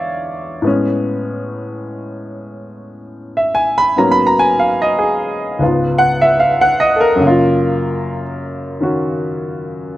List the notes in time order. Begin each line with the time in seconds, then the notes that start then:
Already playing: E2 D3 E3 G#3 B3 F4 C#5 D5 E5 F5
0.62 A2 G#3 B3
0.67 C#4
3.37 E5
3.55 G#5
3.78 B5
3.96 G#2 F#3 A#3 B3 C#4 A#5
4.11 B5
4.27 A#5
4.39 G#5
4.59 F5
4.82 D#5
4.99 G#4
5.59 C#2 G#2 B3
5.63 F4
5.98 F#5
6.21 E5
6.40 F5
6.61 F#5
6.80 D#5
6.96 A4
7.01 A#4
7.16 F#2
7.20 C#3 A#3
7.27 F4
8.80 D#3 C#4 F#4